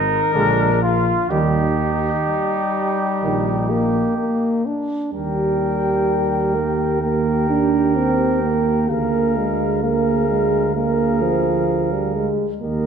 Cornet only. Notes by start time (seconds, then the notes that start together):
Already playing: A#4
0.83 F4
1.30 D#4
5.15 G5
7.02 G5
8.90 F5
9.83 F5
10.76 F5
12.61 D#5